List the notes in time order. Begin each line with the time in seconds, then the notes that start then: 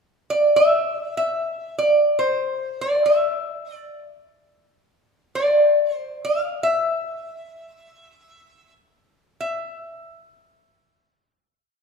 0.30 D5
0.56 E5
1.17 E5
1.78 D5
2.19 C5
2.81 D5
3.06 E5
3.75 D5
5.35 D5
5.94 C5
6.25 F5
6.63 E5
9.40 E5